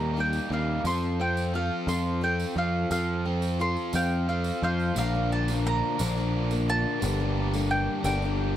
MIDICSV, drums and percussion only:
0, 0, Header, 1, 2, 480
1, 0, Start_track
1, 0, Tempo, 686499
1, 587, Time_signature, 6, 3, 24, 8
1, 5990, End_track
2, 0, Start_track
2, 0, Title_t, "Drums"
2, 230, Note_on_c, 9, 54, 63
2, 300, Note_off_c, 9, 54, 0
2, 593, Note_on_c, 9, 54, 76
2, 663, Note_off_c, 9, 54, 0
2, 717, Note_on_c, 9, 54, 23
2, 787, Note_off_c, 9, 54, 0
2, 957, Note_on_c, 9, 54, 58
2, 1027, Note_off_c, 9, 54, 0
2, 1318, Note_on_c, 9, 54, 82
2, 1388, Note_off_c, 9, 54, 0
2, 1674, Note_on_c, 9, 54, 63
2, 1744, Note_off_c, 9, 54, 0
2, 2033, Note_on_c, 9, 54, 94
2, 2103, Note_off_c, 9, 54, 0
2, 2392, Note_on_c, 9, 54, 66
2, 2462, Note_off_c, 9, 54, 0
2, 2633, Note_on_c, 9, 54, 29
2, 2703, Note_off_c, 9, 54, 0
2, 2747, Note_on_c, 9, 54, 90
2, 2817, Note_off_c, 9, 54, 0
2, 3105, Note_on_c, 9, 54, 69
2, 3175, Note_off_c, 9, 54, 0
2, 3353, Note_on_c, 9, 54, 28
2, 3423, Note_off_c, 9, 54, 0
2, 3468, Note_on_c, 9, 54, 117
2, 3538, Note_off_c, 9, 54, 0
2, 3832, Note_on_c, 9, 54, 83
2, 3902, Note_off_c, 9, 54, 0
2, 4189, Note_on_c, 9, 54, 108
2, 4259, Note_off_c, 9, 54, 0
2, 4316, Note_on_c, 9, 54, 35
2, 4386, Note_off_c, 9, 54, 0
2, 4550, Note_on_c, 9, 54, 73
2, 4620, Note_off_c, 9, 54, 0
2, 4909, Note_on_c, 9, 54, 98
2, 4979, Note_off_c, 9, 54, 0
2, 5268, Note_on_c, 9, 54, 71
2, 5338, Note_off_c, 9, 54, 0
2, 5624, Note_on_c, 9, 54, 97
2, 5694, Note_off_c, 9, 54, 0
2, 5749, Note_on_c, 9, 54, 32
2, 5818, Note_off_c, 9, 54, 0
2, 5990, End_track
0, 0, End_of_file